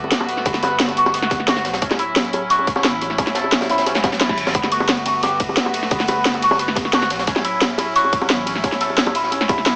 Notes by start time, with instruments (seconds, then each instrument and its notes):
Already playing: sub bass G1, string section A3 B3 F#4
0.04 high bongo
0.11 sub bass D1, snare, closed hi-hat
0.20 high bongo
0.29 closed hi-hat
0.37 snare
0.45 sub bass G1, clean electric guitar B3, kick, closed hi-hat, high bongo
0.54 snare, closed hi-hat
0.63 clean electric guitar B4, snare, closed hi-hat, high bongo
0.79 sub bass G1, snare, closed hi-hat
0.88 snare, closed hi-hat, high bongo
0.97 clean electric guitar F#4, closed hi-hat
1.05 snare, high bongo
1.14 clean electric guitar B3, closed hi-hat
1.22 snare
1.31 kick, snare, closed hi-hat, high bongo
1.40 snare
1.47 clean electric guitar F#4, snare, closed hi-hat, high bongo
1.56 snare, closed hi-hat
1.65 sub bass B1, snare, closed hi-hat
1.73 snare, closed hi-hat, high bongo
1.82 sub bass D1, string section F#3 C#4 E4, clean electric guitar C#4, kick, closed hi-hat
1.91 snare, closed hi-hat, high bongo
1.99 clean electric guitar E4, closed hi-hat
2.16 snare, closed hi-hat, high bongo
2.25 snare, closed hi-hat
2.33 clean electric guitar C#4, closed hi-hat, high bongo
2.50 clean electric guitar F#4, closed hi-hat
2.59 high bongo
2.67 kick, closed hi-hat
2.76 snare, high bongo
2.84 sub bass A1, snare, closed hi-hat
3.01 closed hi-hat, high bongo
3.10 snare
3.18 sub bass D1, clean electric guitar C#4, kick, closed hi-hat, high bongo
3.27 snare, closed hi-hat
3.35 clean electric guitar A4, snare, closed hi-hat
3.44 high bongo
3.52 sub bass D1, snare, closed hi-hat
3.61 snare, closed hi-hat, high bongo
3.70 clean electric guitar E4, snare, closed hi-hat
3.78 snare, closed hi-hat
3.86 clean electric guitar C#4, snare, closed hi-hat, high bongo, reverse cymbal
3.95 snare, closed hi-hat
4.04 kick, snare, closed hi-hat, high bongo
4.12 snare, closed hi-hat
4.20 sub bass F#1, clean electric guitar E4, snare, closed hi-hat
4.29 kick, snare, high bongo
4.38 sub bass A1, closed hi-hat
4.47 snare, closed hi-hat, high bongo
4.55 sub bass G1, string section A3 B3 F#4, clean electric guitar B3, kick, closed hi-hat
4.63 snare, closed hi-hat, high bongo
4.72 clean electric guitar F#4, closed hi-hat, ride
4.80 high bongo
4.89 snare, closed hi-hat
4.97 snare, closed hi-hat
5.05 clean electric guitar F#4, snare, closed hi-hat, ride, high bongo
5.23 clean electric guitar G4, closed hi-hat, high bongo
5.40 kick, closed hi-hat, ride
5.49 high bongo
5.57 sub bass D1, snare, closed hi-hat
5.66 high bongo
5.74 closed hi-hat, ride
5.83 snare
5.91 sub bass G1, clean electric guitar B3, kick, closed hi-hat, high bongo
6.00 snare, closed hi-hat
6.08 clean electric guitar B4, snare, closed hi-hat, ride, high bongo
6.25 sub bass G1, snare, closed hi-hat
6.34 snare, closed hi-hat, high bongo
6.42 clean electric guitar F#4, closed hi-hat, ride
6.51 snare, high bongo
6.59 clean electric guitar B3, closed hi-hat
6.68 snare
6.76 kick, snare, closed hi-hat, ride, high bongo
6.85 snare
6.93 clean electric guitar F#4, snare, closed hi-hat, high bongo
7.01 snare, closed hi-hat
7.10 sub bass B1, snare, closed hi-hat, ride
7.19 snare, closed hi-hat, high bongo
7.27 sub bass D1, string section F#3 C#4 E4, clean electric guitar C#4, kick, closed hi-hat
7.36 snare, closed hi-hat, high bongo
7.45 clean electric guitar E4, closed hi-hat, ride
7.61 snare, closed hi-hat, high bongo
7.70 snare, closed hi-hat
7.78 clean electric guitar E4, snare, closed hi-hat, ride, high bongo
7.96 clean electric guitar F#4, closed hi-hat
8.04 high bongo
8.13 kick, closed hi-hat, ride
8.21 high bongo
8.30 sub bass A1, snare, closed hi-hat
8.46 closed hi-hat, ride, high bongo
8.55 snare
8.64 sub bass D1, clean electric guitar C#4, kick, closed hi-hat, high bongo
8.72 snare, closed hi-hat
8.80 clean electric guitar A4, snare, closed hi-hat, ride
8.90 high bongo
8.98 sub bass D1, snare, closed hi-hat
9.07 snare, closed hi-hat, high bongo
9.15 clean electric guitar E4, closed hi-hat, ride
9.23 snare
9.32 clean electric guitar C#4, closed hi-hat, high bongo
9.40 snare
9.49 clean electric guitar E4, kick, snare, closed hi-hat, ride, high bongo
9.58 sub bass F#1, snare
9.66 clean electric guitar E4, snare, closed hi-hat